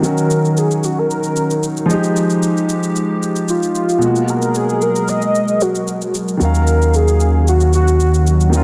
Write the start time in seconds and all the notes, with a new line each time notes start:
Already playing: D#3 C#4 F#4
0.00 D#3 F#3, shaker
0.04 C#4 D#4 F#4 A#4
0.18 shaker
0.31 shaker
0.45 shaker
0.57 G#4, shaker
0.71 shaker
0.84 F#4, shaker
0.99 A#4
1.11 shaker
1.24 shaker
1.36 shaker
1.51 shaker
1.63 shaker
1.77 shaker
1.86 F3 G#3 G4
1.90 F3 D#4 G4, shaker
2.04 shaker
2.16 shaker
2.30 shaker
2.43 shaker
2.57 shaker
2.69 shaker
2.83 shaker
2.96 shaker
3.23 shaker
3.36 shaker
3.49 F4, shaker
3.63 shaker
3.75 shaker
3.89 shaker
3.98 B2 F#3 G#3 G#4 A#4, shaker
4.03 A#3 F#4
4.16 shaker
4.28 A#4, shaker
4.42 shaker
4.55 G#4, shaker
4.69 shaker
4.82 A#4, shaker
4.96 shaker
5.08 D#5, shaker
5.22 shaker
5.35 shaker
5.48 shaker
5.61 F#4, shaker
5.75 shaker
5.88 shaker
6.02 shaker
6.15 shaker
6.28 shaker
6.37 D#2 D#3 F#3 C#4 F5, shaker
6.42 C#4 A#4 F5
6.55 shaker
6.67 shaker
6.82 shaker
6.94 G#4, shaker
7.08 shaker
7.20 shaker
7.48 F#4, shaker
7.61 shaker
7.73 F#4, shaker
7.88 shaker
8.00 shaker
8.14 shaker
8.27 shaker
8.41 shaker
8.49 D#3 F#3 D#4, shaker
8.54 C#4 F4 A#4